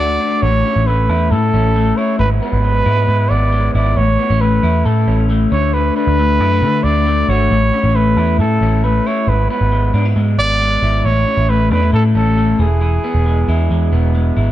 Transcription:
0.00 0.17 D2 medium
0.00 0.43 D3 medium
0.00 0.48 A3 medium
0.00 0.20 D4 medium
0.00 0.48 F#4 medium
0.00 0.44 D5 loud
0.21 0.48 D4 medium
0.42 0.62 A1 loud
0.42 2.19 A2 medium
0.42 0.88 C#5 loud
0.65 1.53 C#4 medium
0.76 1.09 A1 loud
0.87 1.30 A3 medium
0.87 1.33 B4 medium
1.09 1.33 E2 medium
1.09 1.97 E4 medium
1.31 1.50 A2 medium
1.31 1.75 A3 medium
1.31 1.98 A4 loud
1.54 1.91 A1 medium
1.54 2.25 C#4 medium
1.76 2.25 A3 medium
1.97 2.85 E4 medium
1.97 2.18 C#5 medium
2.19 2.39 G#1 loud
2.19 3.96 G#2 medium
2.19 2.29 B4 loud
2.41 3.29 B3 medium
2.41 3.31 B4 loud
2.53 2.81 G#1 loud
2.64 3.07 G#3 medium
2.86 3.05 G#2 medium
2.86 3.74 E4 medium
3.08 3.27 G#2 loud
3.08 3.51 G#3 medium
3.30 3.68 G#1 medium
3.30 4.01 B3 medium
3.30 3.74 D5 loud
3.53 4.01 G#3 medium
3.74 3.94 G#1 medium
3.74 4.01 E4 medium
3.74 3.98 D5 medium
3.97 4.16 A1 loud
3.97 5.56 A2 medium
3.97 4.43 C#5 loud
4.19 4.30 B3 medium
4.30 4.59 A1 loud
4.30 5.07 C#4 soft
4.41 4.85 A3 medium
4.41 4.87 B4 medium
4.63 4.82 E2 medium
4.63 5.56 E4 medium
4.85 5.05 A2 loud
4.85 5.29 A3 medium
4.85 5.25 A4 medium
5.08 5.45 A1 medium
5.08 5.56 C#4 medium
5.30 6.18 A3 medium
5.51 5.90 D2 medium
5.51 5.73 D3 medium
5.51 5.75 C#5 medium
5.74 7.51 D3 medium
5.74 5.96 B4 loud
5.96 6.84 D4 medium
5.96 6.85 B4 loud
6.07 6.40 D2 medium
6.19 6.62 A3 medium
6.40 6.64 F#2 medium
6.40 6.52 E4 medium
6.52 7.28 F#4 medium
6.62 6.81 D3 loud
6.62 7.07 A3 medium
6.84 7.22 D2 medium
6.84 7.56 D4 medium
6.84 7.31 D5 loud
7.07 7.56 A3 medium
7.29 7.48 G#1 medium
7.29 7.56 F#4 medium
7.29 7.97 C#5 loud
7.51 7.70 A1 loud
7.51 9.27 A2 medium
7.73 8.61 C#4 medium
7.84 8.17 A1 loud
7.96 8.39 A3 medium
7.96 8.39 B4 loud
8.17 8.40 E2 medium
8.17 9.06 E4 medium
8.39 8.58 A2 loud
8.39 8.83 A3 medium
8.39 8.85 A4 loud
8.61 8.99 A1 medium
8.61 9.33 C#4 medium
8.84 9.33 A3 medium
8.84 9.08 B4 medium
9.06 9.94 E4 medium
9.06 9.30 C#5 medium
9.28 9.47 G#1 loud
9.28 11.04 G#2 medium
9.28 9.50 B4 medium
9.50 10.37 B3 medium
9.50 10.08 B4 medium
9.61 9.89 G#1 loud
9.72 10.15 G#3 medium
9.94 10.13 G#2 medium
9.94 10.05 D4 medium
10.05 10.81 E4 medium
10.16 10.35 G#2 loud
10.16 10.59 G#3 medium
10.38 10.76 G#1 medium
10.38 11.09 B3 medium
10.38 11.07 D5 loud
10.61 11.09 G#3 medium
10.82 11.01 G#1 medium
10.82 11.70 E4 medium
11.05 11.24 A1 loud
11.05 12.64 A2 medium
11.05 11.51 C#5 loud
11.27 12.14 C#4 medium
11.38 11.71 A1 loud
11.49 11.92 A3 medium
11.49 11.71 B4 loud
11.71 11.90 E2 medium
11.71 11.82 D4 medium
11.71 11.92 B4 loud
11.82 12.64 E4 medium
11.93 12.12 A2 loud
11.93 12.36 A3 medium
11.93 12.04 A4 medium
12.15 12.53 A1 medium
12.15 12.64 C#4 medium
12.15 12.62 A4 loud
12.38 12.64 A3 medium
12.59 12.97 E1 loud
12.59 12.81 E3 medium
12.59 14.15 G#4 medium
12.81 14.52 E3 medium
13.04 13.91 B3 medium
13.15 13.43 E1 medium
13.26 13.69 G#3 medium
13.48 13.67 E2 medium
13.48 14.36 E4 medium
13.71 13.89 E2 loud
13.71 14.13 G#3 medium
13.92 14.30 E1 medium
13.92 14.52 B3 medium
14.15 14.52 G#3 medium
14.37 14.52 G#1 medium
14.37 14.52 E4 medium

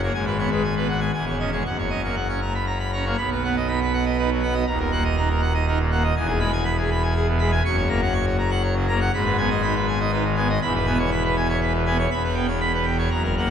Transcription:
0.02 0.12 A#3 medium
0.02 0.12 C#5 medium
0.14 1.11 G#1 medium
0.14 1.11 G#2 loud
0.14 0.25 G#5 loud
0.26 0.37 B4 medium
0.38 0.50 B3 medium
0.38 0.49 C#5 medium
0.51 0.62 G#3 medium
0.51 0.62 B4 medium
0.64 0.75 G#5 medium
0.76 0.87 B3 medium
0.76 0.87 B4 medium
0.88 0.99 F#5 medium
1.00 1.11 G#5 medium
1.14 1.63 E1 medium
1.14 1.63 E2 medium
1.14 1.25 G#5 loud
1.26 1.38 C#5 medium
1.39 1.51 C#4 medium
1.39 1.50 D#5 medium
1.52 1.63 G#3 medium
1.52 1.63 C#5 medium
1.66 3.15 F#1 medium
1.66 3.15 F#2 medium
1.66 1.77 F#5 medium
1.78 1.89 C#5 medium
1.90 2.02 C#4 medium
1.90 2.01 D#5 medium
2.04 2.15 A#3 medium
2.04 2.15 C#5 medium
2.16 2.27 F#5 medium
2.28 2.40 C#4 medium
2.28 2.40 C#5 medium
2.42 2.53 A#5 medium
2.54 2.65 B5 medium
2.66 2.78 A#5 medium
2.80 2.91 B5 medium
2.93 3.04 C#4 medium
2.93 3.04 A#5 medium
3.05 3.16 A#3 medium
3.05 3.16 C#5 medium
3.18 4.64 B1 medium
3.18 4.64 B2 medium
3.18 3.29 B5 loud
3.32 3.43 B4 medium
3.44 3.55 B3 medium
3.44 3.55 F#5 medium
3.57 3.68 D#5 medium
3.68 3.80 D#4 medium
3.68 3.79 B5 medium
3.81 3.92 B4 medium
3.93 4.04 F#5 medium
4.05 4.17 D#5 medium
4.18 4.29 D#4 medium
4.18 4.29 B4 medium
4.31 4.42 F#3 medium
4.42 4.54 B3 medium
4.42 4.54 F#5 medium
4.54 4.65 D#5 medium
4.67 6.12 D#1 medium
4.67 6.12 D#2 loud
4.67 4.78 A#5 loud
4.79 4.91 A#4 medium
4.92 5.03 A#3 medium
4.92 5.03 F#5 medium
5.04 5.16 D#5 medium
5.17 5.28 D#4 medium
5.17 5.28 A#5 medium
5.29 5.41 A#4 medium
5.41 5.53 F#5 medium
5.54 5.66 D#5 medium
5.67 5.78 D#4 medium
5.67 5.78 A#4 medium
5.80 5.91 A#2 medium
5.91 6.03 A#3 medium
5.91 6.03 F#5 medium
6.04 6.15 D#5 medium
6.16 7.61 E1 medium
6.16 7.61 E2 medium
6.16 6.27 G#5 medium
6.27 6.39 G#4 medium
6.39 6.51 G#3 medium
6.39 6.51 B5 loud
6.52 6.64 G#5 medium
6.65 6.76 B5 medium
6.78 6.89 G#4 medium
6.91 7.02 B5 medium
7.03 7.14 G#5 medium
7.16 7.27 G#4 medium
7.27 7.39 B2 medium
7.39 7.51 G#3 medium
7.39 7.51 B5 medium
7.52 7.63 G#5 medium
7.65 9.09 F#1 loud
7.65 9.10 F#2 loud
7.65 7.76 C#6 loud
7.77 7.88 C#5 medium
7.89 8.00 A#3 medium
7.89 8.00 A#5 medium
8.02 8.13 F#5 medium
8.13 8.25 C#6 medium
8.25 8.37 C#5 medium
8.38 8.50 A#5 medium
8.50 8.62 F#5 medium
8.62 8.74 C#5 loud
8.75 8.86 C#3 medium
8.88 9.00 A#3 medium
8.88 8.99 A#5 medium
9.01 9.11 F#5 medium
9.14 10.58 G#1 loud
9.14 10.58 G#2 loud
9.14 9.25 B5 loud
9.25 9.36 B4 medium
9.38 9.49 B3 medium
9.38 9.49 G#5 loud
9.50 9.62 D#5 medium
9.62 9.74 D#4 medium
9.62 9.74 B5 medium
9.76 9.87 B4 medium
9.88 9.99 G#5 medium
10.00 10.11 D#5 medium
10.12 10.24 D#4 medium
10.12 10.23 B4 medium
10.24 10.35 D#3 medium
10.36 10.48 B3 medium
10.36 10.48 G#5 loud
10.49 10.60 D#5 medium
10.61 12.07 E1 loud
10.61 12.07 E2 loud
10.61 10.73 B5 loud
10.75 10.86 B4 medium
10.86 10.98 B3 medium
10.86 10.98 G#5 medium
10.99 11.10 C#5 medium
11.11 11.23 B5 medium
11.24 11.35 B4 medium
11.37 11.48 G#5 medium
11.49 11.60 C#5 medium
11.61 11.72 B4 medium
11.74 11.85 B2 medium
11.86 11.97 B3 medium
11.86 11.97 G#5 medium
11.99 12.09 C#5 medium
12.11 13.09 E1 loud
12.11 13.09 E2 medium
12.11 12.22 B5 loud
12.24 12.35 B4 medium
12.35 12.47 B3 medium
12.35 12.46 G5 medium
12.48 12.59 C#5 medium
12.60 12.72 B5 medium
12.74 12.85 B4 medium
12.85 12.97 G5 medium
12.98 13.09 C#5 medium
13.10 13.50 F#1 medium
13.10 13.50 F#2 medium
13.10 13.22 A#5 loud
13.23 13.35 A#4 medium
13.37 13.49 A#3 medium
13.37 13.49 F#5 medium

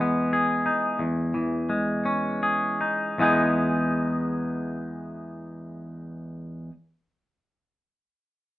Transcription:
0.00 0.69 E2 soft
0.00 1.34 E3 soft
0.00 1.69 G#3 soft
0.00 1.00 B3 soft
0.33 2.42 G#4 soft
0.66 1.02 D#4 soft
0.99 2.80 E2 soft
1.34 3.18 E3 soft
1.70 3.19 G#3 soft
2.05 3.20 C#4 soft
2.43 3.20 G#4 soft
2.81 3.20 D#4 soft
3.18 6.69 E2 soft
3.18 6.70 E3 soft
3.18 6.71 G#3 soft
3.18 6.72 B3 soft
3.18 6.72 D#4 soft
3.18 6.73 G#4 soft

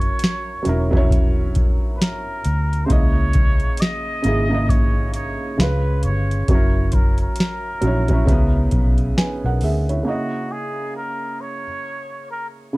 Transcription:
0.00 0.50 F#3 medium
0.00 0.51 C#4 medium
0.00 0.52 E4 medium
0.00 0.53 A#4 medium
0.00 1.08 C#5 loud
0.00 closed hi-hat soft
0.19 closed hi-hat medium
0.24 snare loud
0.63 1.79 E1 medium
0.63 0.88 F#3 medium
0.63 0.89 C#4 medium
0.63 0.89 E4 medium
0.63 closed hi-hat medium
0.69 0.91 A#4 medium
0.91 2.41 F#3 medium
0.91 2.42 C#4 medium
0.91 2.43 E4 medium
0.91 kick medium
0.97 2.44 C#5 loud
1.11 kick medium
1.11 closed hi-hat medium
1.55 kick medium
1.55 closed hi-hat medium
1.96 2.04 B4 medium
2.02 2.87 A#4 medium
2.02 snare loud
2.02 closed hi-hat medium
2.45 2.84 D2 medium
2.45 closed hi-hat medium
2.73 closed hi-hat soft
2.86 4.07 C#3 medium
2.86 4.08 A#3 medium
2.86 2.93 C5 medium
2.90 3.68 C#2 loud
2.90 4.09 E4 medium
2.90 3.82 C#5 loud
2.90 4.10 D#5 medium
2.90 kick loud
2.90 closed hi-hat medium
3.33 kick loud
3.33 closed hi-hat medium
3.60 closed hi-hat soft
3.77 4.71 D#5 loud
3.77 closed hi-hat medium
3.82 snare loud
4.22 5.37 G#1 medium
4.22 4.47 C#3 medium
4.22 4.47 A#3 medium
4.22 4.48 E4 medium
4.22 closed hi-hat medium
4.28 4.49 G#4 medium
4.49 5.56 C#3 medium
4.49 5.58 A#3 medium
4.49 5.59 E4 medium
4.54 5.60 D#5 medium
4.69 5.14 C#5 loud
4.69 kick loud
4.69 closed hi-hat medium
5.14 5.61 C#5 loud
5.14 closed hi-hat medium
5.58 6.05 C#2 loud
5.58 6.37 C#3 medium
5.58 6.38 C#4 medium
5.58 6.39 F4 medium
5.58 6.04 B4 medium
5.58 snare loud
5.58 closed hi-hat medium
5.63 6.40 B4 medium
6.03 6.43 G1 medium
6.03 6.46 C#5 medium
6.03 closed hi-hat medium
6.31 closed hi-hat soft
6.48 7.26 F#1 loud
6.48 7.67 F#3 medium
6.48 7.68 C#4 medium
6.48 6.95 C#5 loud
6.48 kick loud
6.48 closed hi-hat medium
6.53 7.69 E4 medium
6.53 7.70 A#4 medium
6.92 7.21 A#4 medium
6.92 kick loud
6.92 closed hi-hat medium
7.18 8.96 A#4 medium
7.18 closed hi-hat soft
7.36 closed hi-hat medium
7.40 snare loud
7.81 8.22 A#1 medium
7.81 8.05 F#3 medium
7.81 8.06 C#4 medium
7.81 8.07 E4 medium
7.81 closed hi-hat medium
7.87 8.08 C#5 medium
8.08 8.27 F#3 medium
8.08 8.26 C#4 medium
8.08 kick medium
8.08 closed hi-hat soft
8.12 8.28 E4 medium
8.12 8.30 F#4 medium
8.26 8.66 C#2 loud
8.26 9.83 C#3 medium
8.26 9.84 C#4 medium
8.26 9.18 E4 medium
8.26 kick loud
8.26 closed hi-hat medium
8.31 9.19 B3 loud
8.71 9.12 B1 medium
8.71 kick medium
8.71 closed hi-hat medium
8.98 closed hi-hat soft
9.18 9.43 B4 soft
9.18 9.43 G#5 medium
9.18 snare loud
9.18 closed hi-hat medium
9.44 9.60 B1 medium
9.44 9.62 A#4 medium
9.44 9.62 F#5 medium
9.61 10.01 D2 medium
9.61 9.89 G#4 soft
9.61 9.89 E5 medium
9.61 open hi-hat soft
9.89 10.05 E4 soft
9.89 10.32 C#5 medium
9.89 closed hi-hat soft
10.03 11.61 C#3 medium
10.03 11.62 A#3 medium
10.03 11.63 E4 medium
10.03 10.53 F#4 medium
10.09 11.64 D#5 medium
10.52 10.96 G#4 medium
10.96 11.42 A#4 medium
11.41 12.31 C#5 loud
12.31 12.47 A#4 medium
12.73 12.77 C#3 medium

